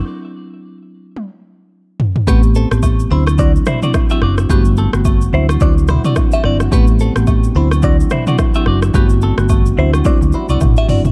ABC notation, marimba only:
X:1
M:4/4
L:1/16
Q:"Swing 16ths" 1/4=108
K:Dmix
V:1 name="Marimba"
z16 | [A,B,CG] z2 [A,B,CG] z2 [F,CDE] z [F,CDE] z2 [F,CDE] z [F,CDE] z2 | [G,A,B,F] z2 [G,A,B,F] z2 [F,CDE] z [F,CDE] z2 [F,CDE] z2 [F,CDE] z | [A,B,CG] z2 [A,B,CG] z2 [F,CDE] z [F,CDE] z2 [F,CDE] z [F,CDE] z2 |
[G,A,B,F] z2 [G,A,B,F] z2 [F,CDE] z [F,CDE] z2 [F,CDE] z2 [F,CDE] z |]